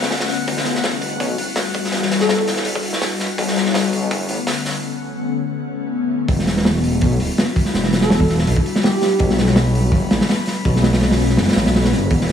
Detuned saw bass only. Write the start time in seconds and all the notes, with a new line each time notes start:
0.48 E1
1.20 B1
1.38 D1
1.93 E1
2.65 B1
3.38 B1
4.11 F#1
4.29 A1
6.29 E1
7.02 B1
7.20 D1
7.75 E1
8.47 B1
9.20 B1
9.92 F#1
10.11 A1
10.65 B1
11.38 F#1
11.56 A1
11.66 B1
11.93 F#1
12.11 E1